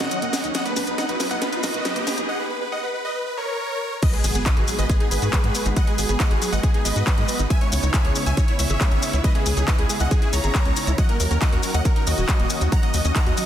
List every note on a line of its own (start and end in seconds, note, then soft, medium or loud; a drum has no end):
0.00 0.07 D#1 medium
0.00 0.51 D#3 medium
0.00 2.25 F#3 medium
0.00 0.51 C#4 medium
0.00 0.51 F#4 medium
0.00 0.07 F#4 medium
0.00 0.46 D#5 medium
0.00 0.46 F#5 loud
0.00 snare medium
0.00 closed hi-hat soft
0.00 riser medium
0.11 0.18 F#3 medium
0.11 closed hi-hat medium
0.11 maracas soft
0.22 0.29 D#1 medium
0.22 0.29 A#3 loud
0.22 closed hi-hat soft
0.22 maracas soft
0.33 0.40 C#4 medium
0.33 snare medium
0.33 open hi-hat medium
0.33 maracas medium
0.44 0.51 D#2 medium
0.44 0.51 D#4 medium
0.44 closed hi-hat soft
0.44 maracas soft
0.54 0.62 F#3 medium
0.54 2.27 B3 medium
0.54 2.27 D#4 medium
0.54 0.62 D#5 medium
0.54 0.62 F#5 loud
0.54 snare medium
0.54 closed hi-hat medium
0.54 maracas medium
0.66 0.73 A#3 medium
0.66 0.73 B4 medium
0.66 closed hi-hat soft
0.66 maracas soft
0.76 0.83 B1 medium
0.76 0.84 B4 medium
0.76 snare medium
0.76 open hi-hat loud
0.76 maracas loud
0.87 0.94 B1 medium
0.87 0.94 B3 medium
0.87 0.95 B4 medium
0.87 closed hi-hat soft
0.87 maracas soft
0.98 1.05 D#4 medium
0.98 1.06 D#5 medium
0.98 1.06 F#5 medium
0.98 snare medium
0.98 closed hi-hat medium
0.98 maracas soft
1.09 1.16 B1 medium
1.09 1.16 F#4 loud
1.09 1.16 B4 medium
1.09 closed hi-hat soft
1.09 maracas soft
1.20 1.24 F#3 medium
1.20 1.27 B4 medium
1.20 snare medium
1.20 open hi-hat medium
1.20 maracas medium
1.31 1.38 B1 medium
1.31 1.38 A#3 medium
1.31 1.38 D#5 medium
1.31 1.38 F#5 loud
1.31 closed hi-hat soft
1.31 maracas soft
1.42 1.49 B3 medium
1.42 1.49 B4 medium
1.42 snare medium
1.42 closed hi-hat medium
1.42 maracas soft
1.52 1.57 D#4 loud
1.52 1.60 B4 medium
1.52 closed hi-hat soft
1.52 maracas soft
1.63 1.70 B1 medium
1.63 1.74 A#4 medium
1.63 2.20 B4 medium
1.63 2.20 D#5 loud
1.63 snare medium
1.63 open hi-hat loud
1.63 maracas medium
1.74 1.81 F#1 medium
1.74 1.81 F#4 medium
1.74 closed hi-hat soft
1.74 maracas soft
1.85 1.92 F#3 medium
1.85 snare medium
1.85 closed hi-hat medium
1.85 maracas medium
1.96 2.03 F#1 medium
1.96 2.03 A#3 loud
1.96 closed hi-hat soft
1.96 maracas soft
2.07 2.14 B3 medium
2.07 snare medium
2.07 open hi-hat medium
2.07 maracas medium
2.17 2.24 B1 medium
2.17 2.25 D#4 medium
2.17 closed hi-hat soft
2.17 maracas soft
2.29 2.36 D#5 medium
2.29 2.36 F#5 loud
2.39 2.47 B4 medium
2.50 2.58 B4 medium
2.61 2.69 B4 medium
2.72 2.79 D#5 medium
2.72 2.79 F#5 medium
2.83 2.90 B4 medium
2.94 3.01 B4 medium
3.05 3.12 B4 medium
3.05 3.12 D#5 loud
3.15 3.23 B4 medium
3.27 3.34 B4 medium
3.37 3.94 A#4 medium
3.37 3.94 C#5 loud
4.02 4.10 F#3 medium
4.02 7.47 G#3 medium
4.02 10.94 B3 medium
4.02 7.47 F#4 medium
4.02 4.10 B4 medium
4.02 7.47 B4 medium
4.02 4.10 D#5 loud
4.02 kick loud
4.02 closed hi-hat medium
4.02 crash loud
4.02 impact medium
4.02 maracas soft
4.13 4.21 G#3 medium
4.13 4.21 G#4 medium
4.13 closed hi-hat soft
4.24 4.31 G#1 medium
4.24 4.32 G#4 medium
4.24 open hi-hat loud
4.24 maracas loud
4.35 4.42 G#1 medium
4.35 4.42 B3 medium
4.35 4.42 G#4 medium
4.35 4.43 G#4 medium
4.35 closed hi-hat soft
4.35 maracas medium
4.46 4.53 D#4 medium
4.46 4.53 B4 medium
4.46 4.53 D#5 medium
4.46 kick loud
4.46 clap loud
4.46 closed hi-hat medium
4.46 maracas soft
4.57 4.64 G#1 medium
4.57 4.64 F#4 loud
4.57 4.64 G#4 medium
4.57 closed hi-hat soft
4.68 4.72 F#3 medium
4.68 4.75 G#4 medium
4.68 open hi-hat medium
4.68 maracas medium
4.79 4.85 G#1 medium
4.79 4.86 G#3 medium
4.79 4.86 B4 medium
4.79 4.86 D#5 loud
4.79 4.86 D#5 medium
4.79 closed hi-hat soft
4.79 maracas soft
4.89 4.97 B3 medium
4.89 4.97 G#4 medium
4.89 kick loud
4.89 closed hi-hat medium
4.89 maracas soft
5.00 5.05 D#4 loud
5.00 5.08 G#4 medium
5.00 closed hi-hat soft
5.11 5.18 G#1 medium
5.11 5.68 G#4 medium
5.11 5.22 G#4 medium
5.11 5.68 B4 loud
5.11 open hi-hat loud
5.11 maracas loud
5.22 5.29 G#2 medium
5.22 5.29 F#4 medium
5.22 closed hi-hat soft
5.22 maracas soft
5.32 5.40 F#3 medium
5.32 kick loud
5.32 clap loud
5.32 closed hi-hat medium
5.32 maracas soft
5.44 5.51 G#2 medium
5.44 5.51 G#3 loud
5.44 closed hi-hat soft
5.55 5.62 B3 medium
5.55 open hi-hat medium
5.55 maracas medium
5.65 5.72 G#1 medium
5.65 5.73 D#4 medium
5.65 closed hi-hat soft
5.65 maracas soft
5.76 5.84 F#3 medium
5.76 5.84 D#5 medium
5.76 5.84 F#5 loud
5.76 kick loud
5.76 closed hi-hat medium
5.76 maracas soft
5.87 5.94 G#3 medium
5.87 5.95 G#4 medium
5.87 closed hi-hat soft
5.98 6.05 G#1 loud
5.98 6.06 G#4 medium
5.98 open hi-hat loud
5.98 maracas loud
6.09 6.16 G#1 medium
6.09 6.16 B3 medium
6.09 6.16 G#4 medium
6.09 closed hi-hat soft
6.09 maracas medium
6.20 6.27 D#4 medium
6.20 6.27 D#5 medium
6.20 6.27 F#5 medium
6.20 kick loud
6.20 clap loud
6.20 closed hi-hat medium
6.20 maracas soft
6.31 6.38 G#1 medium
6.31 6.38 F#4 loud
6.31 6.38 G#4 medium
6.31 closed hi-hat soft
6.42 6.46 F#3 medium
6.42 6.49 G#4 medium
6.42 open hi-hat medium
6.42 maracas loud
6.52 6.59 G#1 medium
6.52 6.60 G#3 medium
6.52 6.60 D#5 medium
6.52 6.60 F#5 medium
6.52 closed hi-hat soft
6.52 maracas medium
6.63 6.71 B3 medium
6.63 6.71 G#4 medium
6.63 kick loud
6.63 closed hi-hat medium
6.63 maracas soft
6.74 6.79 D#4 loud
6.74 6.82 G#4 medium
6.74 closed hi-hat soft
6.85 6.92 G#1 medium
6.85 6.95 G#4 medium
6.85 7.42 B4 medium
6.85 7.42 D#5 loud
6.85 open hi-hat loud
6.85 maracas loud
6.96 7.03 G#2 medium
6.96 7.03 F#4 medium
6.96 closed hi-hat soft
6.96 maracas medium
7.07 7.14 F#3 medium
7.07 kick loud
7.07 clap loud
7.07 closed hi-hat medium
7.07 maracas soft
7.18 7.25 G#2 medium
7.18 7.25 G#3 loud
7.18 closed hi-hat soft
7.28 7.36 B3 medium
7.28 open hi-hat medium
7.28 maracas medium
7.39 7.46 G#1 medium
7.39 7.47 D#4 medium
7.39 closed hi-hat soft
7.39 maracas medium
7.50 10.95 C#3 medium
7.50 7.57 G#3 medium
7.50 13.46 C#4 medium
7.50 10.95 E4 medium
7.50 7.58 E5 medium
7.50 7.58 G#5 loud
7.50 kick loud
7.50 closed hi-hat medium
7.50 maracas soft
7.61 7.68 C#4 medium
7.61 7.69 C#5 medium
7.61 closed hi-hat soft
7.72 7.79 C#2 loud
7.72 7.79 C#5 medium
7.72 open hi-hat loud
7.72 maracas loud
7.83 7.90 C#2 medium
7.83 7.90 D#4 medium
7.83 7.90 C#5 medium
7.83 closed hi-hat soft
7.83 maracas medium
7.94 8.01 E4 medium
7.94 8.01 E5 medium
7.94 8.01 G#5 medium
7.94 kick loud
7.94 clap loud
7.94 closed hi-hat medium
7.94 maracas soft
8.05 8.11 C#2 medium
8.05 8.12 G#4 loud
8.05 8.12 C#5 medium
8.05 closed hi-hat soft
8.15 8.20 G#3 medium
8.15 8.23 C#5 medium
8.15 open hi-hat loud
8.15 maracas medium
8.26 8.33 C#2 medium
8.26 8.34 C#4 medium
8.26 8.34 E5 medium
8.26 8.34 G#5 medium
8.26 closed hi-hat soft
8.26 maracas medium
8.37 8.44 D#4 medium
8.37 8.45 C#5 medium
8.37 kick loud
8.37 closed hi-hat medium
8.37 maracas soft
8.48 8.52 E4 loud
8.48 8.56 C#5 medium
8.48 closed hi-hat soft
8.59 8.66 C#2 medium
8.59 8.69 C#5 medium
8.59 9.16 C#5 medium
8.59 9.16 E5 loud
8.59 open hi-hat loud
8.59 maracas medium
8.70 8.77 G#1 medium
8.70 8.77 G#4 medium
8.70 closed hi-hat soft
8.70 maracas soft
8.81 8.88 G#3 medium
8.81 kick loud
8.81 clap loud
8.81 closed hi-hat medium
8.81 maracas soft
8.92 8.98 G#1 medium
8.92 8.99 C#4 loud
8.92 closed hi-hat soft
9.02 9.10 D#4 medium
9.02 open hi-hat loud
9.02 maracas loud
9.13 9.20 C#2 medium
9.13 9.21 E4 medium
9.13 closed hi-hat soft
9.13 maracas medium
9.24 9.31 G#3 medium
9.24 9.32 B4 medium
9.24 9.32 D#5 loud
9.24 kick loud
9.24 closed hi-hat medium
9.24 maracas soft
9.35 9.42 C#4 medium
9.35 9.42 G#4 medium
9.35 closed hi-hat soft
9.46 9.53 C#2 loud
9.46 9.53 G#4 medium
9.46 open hi-hat loud
9.46 maracas medium
9.57 9.64 C#2 medium
9.57 9.64 D#4 medium
9.57 9.64 G#4 medium
9.57 closed hi-hat soft
9.57 maracas medium
9.68 9.75 E4 medium
9.68 9.75 B4 medium
9.68 9.75 D#5 loud
9.68 9.75 D#5 medium
9.68 kick loud
9.68 clap loud
9.68 closed hi-hat medium
9.68 maracas soft
9.79 9.85 C#2 medium
9.79 9.86 G#4 loud
9.79 9.86 G#4 medium
9.79 closed hi-hat soft
9.89 9.94 G#3 medium
9.89 9.97 G#4 medium
9.89 open hi-hat medium
9.89 maracas loud
10.00 10.07 C#2 medium
10.00 10.07 C#4 medium
10.00 10.08 D#5 medium
10.00 10.08 F#5 medium
10.00 10.08 F#5 loud
10.00 closed hi-hat soft
10.00 maracas soft
10.11 10.18 D#4 medium
10.11 10.19 G#4 medium
10.11 kick loud
10.11 closed hi-hat medium
10.11 maracas soft
10.22 10.26 E4 loud
10.22 10.29 G#4 medium
10.22 10.30 G#4 medium
10.22 closed hi-hat soft
10.33 10.40 C#2 medium
10.33 10.43 C#5 medium
10.33 10.90 C#5 medium
10.33 10.90 A#5 loud
10.33 open hi-hat loud
10.33 maracas medium
10.44 10.51 G#1 medium
10.44 10.51 G#4 medium
10.44 closed hi-hat soft
10.44 maracas soft
10.55 10.62 G#3 medium
10.55 kick loud
10.55 clap loud
10.55 closed hi-hat medium
10.55 maracas soft
10.66 10.72 C#2 medium
10.66 10.73 C#4 loud
10.66 closed hi-hat soft
10.76 10.84 D#4 medium
10.76 open hi-hat loud
10.76 maracas medium
10.87 10.94 C#2 medium
10.87 10.94 E4 medium
10.87 closed hi-hat soft
10.87 maracas medium
10.98 13.46 D#3 medium
10.98 13.46 F#3 medium
10.98 11.05 F#3 medium
10.98 13.46 F#4 medium
10.98 11.06 D#5 medium
10.98 11.06 F#5 loud
10.98 kick loud
10.98 closed hi-hat medium
10.98 maracas soft
11.09 11.16 A#3 medium
11.09 11.16 A#4 medium
11.09 closed hi-hat soft
11.20 11.27 D#2 loud
11.20 11.27 A#4 medium
11.20 open hi-hat loud
11.20 maracas loud
11.31 11.38 D#2 medium
11.31 11.38 C#4 medium
11.31 11.38 A#4 medium
11.31 closed hi-hat soft
11.31 maracas medium
11.41 11.49 D#4 medium
11.41 11.49 D#5 medium
11.41 11.49 F#5 medium
11.41 kick loud
11.41 clap loud
11.41 closed hi-hat medium
11.41 maracas soft
11.53 11.59 D#2 medium
11.53 11.60 F#4 loud
11.53 11.60 A#4 medium
11.53 closed hi-hat soft
11.63 11.68 F#3 medium
11.63 11.71 A#4 medium
11.63 open hi-hat medium
11.63 maracas medium
11.74 11.81 D#2 medium
11.74 11.81 A#3 medium
11.74 11.82 D#5 medium
11.74 11.82 F#5 loud
11.74 closed hi-hat soft
11.74 maracas medium
11.85 11.92 C#4 medium
11.85 11.93 A#4 medium
11.85 kick loud
11.85 closed hi-hat medium
11.85 maracas soft
11.96 12.00 D#4 loud
11.96 12.03 A#4 medium
11.96 12.04 A#4 medium
11.96 closed hi-hat soft
12.07 12.14 D#2 medium
12.07 12.63 F#4 medium
12.07 12.17 A#4 medium
12.07 12.63 D#5 loud
12.07 12.64 D#5 loud
12.07 open hi-hat loud
12.07 maracas medium
12.18 12.25 D#1 medium
12.18 12.25 F#4 medium
12.18 closed hi-hat soft
12.18 maracas soft
12.29 12.36 F#3 medium
12.29 kick loud
12.29 clap loud
12.29 closed hi-hat medium
12.29 maracas soft
12.40 12.46 D#1 medium
12.40 12.47 A#3 loud
12.40 closed hi-hat soft
12.50 12.58 C#4 medium
12.50 open hi-hat medium
12.50 maracas medium
12.61 12.68 D#2 medium
12.61 12.68 D#4 medium
12.61 closed hi-hat soft
12.61 maracas medium
12.72 12.79 F#3 medium
12.72 12.80 F#5 medium
12.72 12.80 A#5 loud
12.72 kick loud
12.72 closed hi-hat medium
12.72 maracas soft
12.83 12.90 A#3 medium
12.83 12.90 D#5 medium
12.83 closed hi-hat soft
12.94 13.01 D#2 loud
12.94 13.01 D#5 medium
12.94 open hi-hat loud
12.94 maracas medium
13.05 13.12 D#2 medium
13.05 13.12 C#4 medium
13.05 13.12 D#5 medium
13.05 closed hi-hat soft
13.05 maracas medium
13.16 13.23 F#5 medium
13.16 13.23 A#5 medium
13.16 13.23 A#5 loud
13.16 kick loud
13.16 clap loud
13.16 closed hi-hat medium
13.16 maracas soft
13.27 13.33 D#2 medium
13.27 13.34 F#4 loud
13.27 13.34 D#5 medium
13.27 closed hi-hat soft
13.37 13.42 F#3 medium
13.37 13.45 D#5 medium
13.37 open hi-hat medium
13.37 maracas medium